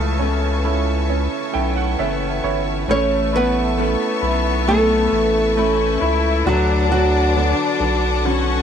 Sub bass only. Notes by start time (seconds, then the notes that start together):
0.00 C#2
1.55 B1
1.99 F#1
2.44 G1
2.88 A1
4.22 B1
5.12 A1
6.01 C#2
6.46 D2
7.80 B1